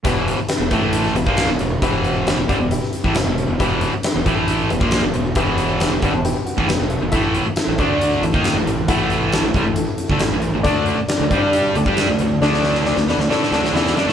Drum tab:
HH |x-x-x-x-x-x-x-x-|x-x-x-x-x-x-x-x-|x-x-x-x-x-x-x-x-|x-x-x-x-x-x-x-x-|
SD |----o----o--o---|----o----o--o---|----o-------o---|----o-------o---|
BD |o-----o----o----|o-----o----o----|o-----o----o----|o-----o----o----|

HH |x-x-x-x-x-x-x-x-|x-x-x-x-x-x-x-x-|x-x-x-x-x-x-x-x-|----------------|
SD |----o-------o---|----o-------o---|----o-------o---|oooooooooooooooo|
BD |o-----o----o----|o-----o----o----|o-----o----o----|----------------|